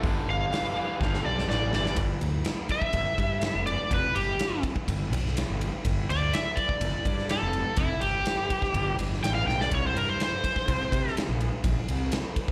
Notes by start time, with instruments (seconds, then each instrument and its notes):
0.02 fingered electric bass G1, overdriven electric guitar G2 D3, kick, open hi-hat
0.28 fingered electric bass G1, electric slide guitar F5
0.51 overdriven electric guitar G2 E3, snare, open hi-hat
0.75 overdriven electric guitar G2 E3
1.00 fingered electric bass G1, overdriven electric guitar G2 F3, kick, snare
1.14 snare
1.25 fingered electric bass B1, electric slide guitar D5
1.39 snare
1.48 fingered electric bass A1, overdriven electric guitar G2 E3, electric slide guitar D5, snare
1.73 fingered electric bass G1, overdriven electric guitar G2 E3, electric slide guitar D5, snare
1.86 snare
1.96 fingered electric bass G1, kick, ride
2.21 fingered electric bass D2, ride
2.45 snare, ride
2.69 electric slide guitar E5, kick, ride
2.82 kick
2.93 fingered electric bass G1, kick, ride
3.18 fingered electric bass G2, kick, ride
3.41 snare, ride
3.55 fingered electric bass F1
3.66 electric slide guitar D5, ride
3.91 fingered electric bass F1, electric slide guitar B4, kick, ride
4.15 fingered electric bass G1, electric slide guitar G4, ride
4.39 snare, ride
4.63 kick, ride
4.76 kick
4.88 fingered electric bass G1, kick, ride
5.13 fingered electric bass B1, ride
5.26 snare
5.37 snare, ride
5.50 fingered electric bass G1
5.61 ride
5.85 fingered electric bass G1, kick, ride
6.10 fingered electric bass D2, electric slide guitar D5, ride
6.33 electric slide guitar E5, snare, ride
6.56 electric slide guitar D5, kick, ride
6.69 kick
6.81 fingered electric bass G1, kick, ride
7.05 fingered electric bass G2, kick, ride
7.18 snare
7.29 electric slide guitar A4, snare, ride
7.43 fingered electric bass F1
7.53 ride
7.76 fingered electric bass F1, electric slide guitar E4, kick, ride
8.01 fingered electric bass G1, electric slide guitar G4, ride
8.26 snare, ride
8.50 kick, ride
8.62 kick, snare
8.74 fingered electric bass G1, kick, ride
8.98 fingered electric bass G1, ride
9.13 snare
9.23 fingered electric bass A1, electric slide guitar G5, snare, ride
9.35 electric slide guitar F5
9.47 fingered electric bass B1, electric slide guitar G5, snare
9.61 electric slide guitar D5, snare
9.71 fingered electric bass C2, electric slide guitar C#5, kick, ride
9.87 electric slide guitar C5
9.94 fingered electric bass G2, electric slide guitar A#4, ride
10.09 electric slide guitar C5
10.20 electric slide guitar C5, snare, ride
10.44 kick, ride
10.56 kick, snare
10.68 fingered electric bass C2, kick, ride
10.92 fingered electric bass C3, kick, ride
11.07 snare
11.17 snare, ride
11.29 fingered electric bass A#1
11.41 ride
11.64 fingered electric bass A#1, kick, ride
11.88 fingered electric bass C2, ride
12.12 snare, ride
12.36 kick, ride
12.48 kick